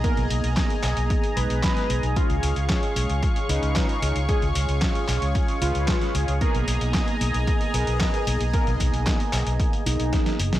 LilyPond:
<<
  \new Staff \with { instrumentName = "Analog synth pad" } { \time 4/4 \key gis \dorian \tempo 4 = 113 << { <dis'' gis'' ais''>1 | <cis'' eis'' cis'''>1~ | <cis'' eis'' cis'''>1 | <dis'' gis'' ais''>1~ |
<dis'' gis'' ais''>1 | } \\ { gis'1~ | gis'1~ | gis'1 | gis'1~ |
gis'1 | } >> }
  \new Staff \with { instrumentName = "Analog synth lead" } { \time 4/4 \key gis \dorian ais'8 r2 b'4. | eis'8 r2 dis'4. | gis'8 r2 eis'4. | ais'8 r2 gis'4. |
ais'8 r2 dis'4. | }
  \new Staff \with { instrumentName = "Analog polysynth" } { \time 4/4 \key gis \dorian <ais b dis' gis'>4. <ais b dis' gis'>4 <gis b dis' gis'>4. | <gis cis' eis' gis'>4. <gis cis' eis' gis'>4 <gis cis' eis' b'>4 <gis cis' eis' gis'>8 | <gis cis' eis' gis'>4. <gis cis' eis' gis'>4 <gis cis' eis' b'>4 <gis cis' eis' gis'>8 | <ais b dis' gis'>4. <ais b dis' gis'>4 <b dis' ais' b'>4 <ais b dis' gis'>8 |
<ais b dis' gis'>4. <ais b dis' gis'>4 <ais b dis' gis'>4. | }
  \new Staff \with { instrumentName = "Fingered electric bass" } { \clef bass \time 4/4 \key gis \dorian r16 b,,16 b,,16 b,,16 r8 b,,16 b,,16 r8 b,,16 b,,16 r8 b,,16 b,,16 | r16 cis,16 cis,16 cis,16 r8 b,,16 cis,16 r8 cis,16 cis,16 r8 cis,16 cis,16 | r16 cis,16 cis,16 cis,16 r8 b,,16 cis,16 r8 cis,16 cis,16 r8 cis,16 cis,16 | r16 b,,16 b,,16 b,,16 r8 b,,16 b,,16 r8 b,,16 b,,16 r8 b,,16 b,,16 |
r16 b,,16 b,,16 b,,16 r8 b,,16 b,,16 r8 b,,16 b,,16 r8 fis,,16 b,,16 | }
  \new DrumStaff \with { instrumentName = "Drums" } \drummode { \time 4/4 <hh bd>16 hh16 hh16 hh16 <hc hh bd sn>16 hh16 <hc hh>16 hh16 <hh bd>16 hh16 hh16 hh16 <hc hh bd sn>16 <hh sn>16 hh16 hh16 | <hh bd>16 hh16 hh16 hh16 <hc hh bd sn>16 hh16 hh16 hh16 <hh bd>16 hh16 hh16 hh16 <hc hh bd sn>16 hh16 hh16 hh16 | <hh bd>16 hh16 hh16 hh16 <hc hh bd sn>16 hh16 <hc hh>16 hh16 <hh bd>16 hh16 hh16 hh16 <hc hh bd sn>16 <hh sn>16 hh16 hh16 | <hh bd>16 hh16 hh16 hh16 <hc hh bd sn>16 hh16 hh16 hh16 <hh bd>16 hh16 hh16 hh16 <hc hh bd sn>16 hh16 hh16 hh16 |
<hh bd>16 hh16 <hh bd>16 hh16 <hc hh bd sn>16 hh16 <hc hh>16 hh16 <hh bd>16 hh16 hh16 hh16 <hh bd sn>16 <hh sn>16 hh16 <hh sn>16 | }
>>